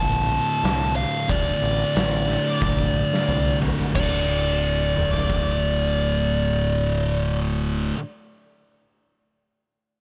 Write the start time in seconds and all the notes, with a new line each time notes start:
Already playing: D2 A2 D3 A5
0.00 A#1
0.63 C2, snare, open hi-hat
0.96 F5
1.29 D1 D2 A2 D3 D5, kick, open hi-hat
1.62 A1
1.95 A1, snare, open hi-hat
2.27 D2 A2 D3
2.61 A#1, kick, high tom
2.79 kick
3.14 snare
3.28 C2, mid tom
3.62 floor tom
3.79 floor tom
3.94 D1 D2 A2 D3 D5, kick, crash
4.96 mid tom
5.13 floor tom
5.30 kick